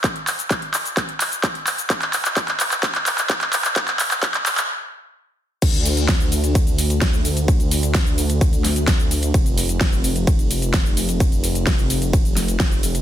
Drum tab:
CC |----------------|----------------|----------------|x---------------|
RD |----------------|----------------|----------------|x---x---x---x---|
HH |xxoxxxoxxxoxxxox|xxoxxxoxxxoxxxox|xxoxxxox--------|xxoxxxoxxxoxxxox|
SH |x-xxx-xxx-xxx-xx|x-xxx-xxx-xxx-xx|x-xxx-xx--------|xxxxxxxxxxxxxxxx|
CP |x-x-x-x-x-x-x-x-|xxxxxxxxxxxxxxxx|xxxxxxxx--------|----------------|
SD |----------------|----------------|----------------|----o-------o---|
BD |o---o---o---o---|o---o---o---o---|o---o-----------|o---o---o---o---|

CC |----------------|----------------|----------------|
RD |x---x---x---x---|x---x---x---x---|x---x---x---x---|
HH |xxoxxxoxxxoxxxox|xxoxxxoxxxoxxxox|xxoxxxoxxxoxxxox|
SH |xxxxxxxxxxxxxxxx|xxxxxxxxxxxxxxxx|xxxxxxxxxxxxxxxx|
CP |----------------|----------------|----------------|
SD |----o-----o-o---|----o-------o---|----o-----o-o---|
BD |o---o---o---o---|o---o---o---o---|o---o---o---o---|